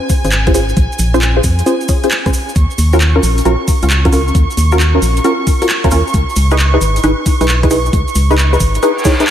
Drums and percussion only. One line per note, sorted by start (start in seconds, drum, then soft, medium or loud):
0.09 kick loud
0.09 open hi-hat loud
0.09 maracas loud
0.25 closed hi-hat medium
0.25 maracas soft
0.31 clap loud
0.31 maracas medium
0.47 kick loud
0.47 cross-stick medium
0.47 closed hi-hat soft
0.54 open hi-hat loud
0.54 maracas medium
0.69 maracas soft
0.77 kick loud
0.77 closed hi-hat medium
0.77 maracas soft
0.92 maracas soft
0.99 open hi-hat loud
0.99 maracas medium
1.14 cross-stick medium
1.14 maracas soft
1.22 clap loud
1.22 closed hi-hat soft
1.22 maracas medium
1.44 kick medium
1.44 open hi-hat loud
1.44 maracas medium
1.59 closed hi-hat medium
1.59 maracas soft
1.66 closed hi-hat medium
1.66 maracas medium
1.81 maracas soft
1.89 kick loud
1.89 open hi-hat loud
1.89 maracas loud
2.03 closed hi-hat medium
2.03 maracas soft
2.11 clap loud
2.11 maracas medium
2.26 kick loud
2.26 cross-stick medium
2.26 closed hi-hat medium
2.26 maracas soft
2.33 open hi-hat loud
2.33 maracas medium
2.49 maracas soft
2.55 kick loud
2.55 closed hi-hat medium
2.55 maracas medium
2.71 maracas soft
2.78 open hi-hat loud
2.78 maracas medium
2.93 cross-stick soft
2.93 maracas soft
3.00 clap loud
3.00 closed hi-hat soft
3.00 maracas medium
3.23 open hi-hat medium
3.23 maracas medium
3.38 closed hi-hat medium
3.38 maracas soft
3.45 closed hi-hat medium
3.45 maracas soft
3.68 kick loud
3.68 open hi-hat loud
3.68 maracas loud
3.82 closed hi-hat medium
3.82 maracas soft
3.90 clap loud
3.90 maracas medium
4.05 kick loud
4.05 cross-stick medium
4.05 closed hi-hat medium
4.12 open hi-hat loud
4.12 maracas medium
4.28 maracas soft
4.35 kick loud
4.35 closed hi-hat medium
4.35 maracas soft
4.50 maracas soft
4.57 open hi-hat loud
4.57 maracas medium
4.72 cross-stick soft
4.72 maracas soft
4.80 clap loud
4.80 closed hi-hat soft
4.80 maracas medium
5.02 open hi-hat loud
5.02 maracas medium
5.16 closed hi-hat medium
5.16 maracas soft
5.24 closed hi-hat medium
5.24 maracas soft
5.47 kick loud
5.47 open hi-hat loud
5.47 maracas medium
5.62 closed hi-hat medium
5.62 maracas soft
5.69 clap loud
5.69 maracas soft
5.84 kick loud
5.84 cross-stick medium
5.84 closed hi-hat medium
5.91 open hi-hat loud
5.91 maracas medium
6.07 maracas soft
6.13 kick loud
6.13 closed hi-hat medium
6.13 maracas soft
6.30 maracas soft
6.36 open hi-hat loud
6.36 maracas medium
6.51 cross-stick medium
6.51 maracas soft
6.59 clap loud
6.59 closed hi-hat soft
6.59 maracas medium
6.81 open hi-hat loud
6.81 maracas medium
6.96 closed hi-hat medium
6.96 maracas soft
7.03 closed hi-hat medium
7.03 maracas soft
7.26 kick loud
7.26 open hi-hat loud
7.26 maracas medium
7.41 closed hi-hat medium
7.41 maracas soft
7.48 clap loud
7.48 maracas soft
7.63 kick loud
7.63 cross-stick medium
7.63 closed hi-hat medium
7.70 open hi-hat loud
7.70 maracas medium
7.86 maracas soft
7.93 kick loud
7.93 closed hi-hat medium
7.93 maracas soft
8.08 maracas soft
8.15 open hi-hat loud
8.15 maracas medium
8.30 cross-stick medium
8.30 maracas soft
8.38 clap loud
8.38 closed hi-hat soft
8.38 maracas soft
8.53 maracas soft
8.60 kick medium
8.60 open hi-hat loud
8.60 maracas medium
8.74 closed hi-hat medium
8.74 maracas soft
8.83 closed hi-hat medium
8.83 maracas soft
8.99 maracas soft
9.05 kick loud
9.05 open hi-hat loud
9.05 maracas medium
9.20 closed hi-hat medium
9.20 maracas soft